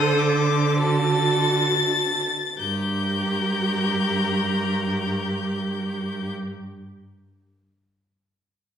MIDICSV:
0, 0, Header, 1, 5, 480
1, 0, Start_track
1, 0, Key_signature, -2, "minor"
1, 0, Tempo, 1156069
1, 566, Tempo, 1226994
1, 1046, Time_signature, 6, 3, 24, 8
1, 1046, Tempo, 1134216
1, 3665, End_track
2, 0, Start_track
2, 0, Title_t, "Violin"
2, 0, Program_c, 0, 40
2, 0, Note_on_c, 0, 87, 120
2, 81, Note_on_c, 0, 86, 120
2, 87, Note_off_c, 0, 87, 0
2, 323, Note_on_c, 0, 93, 127
2, 330, Note_off_c, 0, 86, 0
2, 1044, Note_off_c, 0, 93, 0
2, 1047, Note_on_c, 0, 91, 102
2, 2625, Note_off_c, 0, 91, 0
2, 3665, End_track
3, 0, Start_track
3, 0, Title_t, "Violin"
3, 0, Program_c, 1, 40
3, 0, Note_on_c, 1, 72, 99
3, 322, Note_off_c, 1, 72, 0
3, 324, Note_on_c, 1, 69, 97
3, 913, Note_off_c, 1, 69, 0
3, 1044, Note_on_c, 1, 70, 93
3, 2622, Note_off_c, 1, 70, 0
3, 3665, End_track
4, 0, Start_track
4, 0, Title_t, "Viola"
4, 0, Program_c, 2, 41
4, 0, Note_on_c, 2, 69, 103
4, 322, Note_on_c, 2, 66, 92
4, 329, Note_off_c, 2, 69, 0
4, 924, Note_off_c, 2, 66, 0
4, 1045, Note_on_c, 2, 67, 78
4, 2623, Note_off_c, 2, 67, 0
4, 3665, End_track
5, 0, Start_track
5, 0, Title_t, "Cello"
5, 0, Program_c, 3, 42
5, 0, Note_on_c, 3, 50, 103
5, 924, Note_off_c, 3, 50, 0
5, 1047, Note_on_c, 3, 43, 88
5, 2626, Note_off_c, 3, 43, 0
5, 3665, End_track
0, 0, End_of_file